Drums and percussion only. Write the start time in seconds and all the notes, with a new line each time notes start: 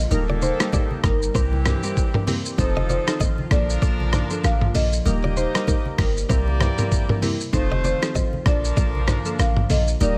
0.11 low conga, shaker
0.30 high conga
0.42 high conga, shaker
0.60 cross-stick, shaker
0.72 kick, low conga, shaker
0.91 high conga
1.04 kick, cross-stick, low conga, shaker
1.22 shaker
1.35 kick, low conga, shaker
1.53 high conga
1.65 cross-stick, mid tom, high conga, shaker
1.83 shaker
1.97 kick, shaker
2.14 mid tom
2.27 open hi-hat, high conga, shaker
2.45 shaker
2.58 kick, low conga, shaker
2.77 high conga
2.89 high conga, shaker
3.07 cross-stick, shaker
3.20 kick, low conga, shaker
3.38 high conga
3.51 kick, cross-stick, low conga, shaker
3.70 shaker
3.82 kick, low conga, shaker
4.00 high conga
4.13 cross-stick, mid tom, high conga, shaker
4.30 shaker
4.44 cross-stick, shaker
4.61 mid tom
4.75 open hi-hat, high conga, shaker
4.93 shaker
5.05 low conga, shaker
5.24 high conga
5.36 high conga, shaker
5.55 cross-stick, shaker
5.67 kick, low conga, shaker
5.85 high conga
5.98 kick, cross-stick, open hi-hat, low conga, shaker
6.17 shaker
6.30 kick, low conga, shaker
6.48 high conga
6.60 cross-stick, mid tom, high conga, shaker
6.78 mid tom, shaker
6.92 kick, shaker
7.09 mid tom
7.22 open hi-hat, high conga, shaker
7.40 shaker
7.53 kick, low conga, shaker
7.72 high conga
7.84 high conga, shaker
8.02 cross-stick, shaker
8.15 kick, low conga, shaker
8.33 high conga
8.46 kick, cross-stick, low conga, shaker
8.64 shaker
8.77 kick, low conga, shaker
8.95 high conga
9.08 cross-stick, mid tom, high conga, shaker
9.25 shaker
9.39 cross-stick, shaker
9.57 mid tom
9.70 open hi-hat, high conga, shaker
9.87 shaker
10.01 low conga, shaker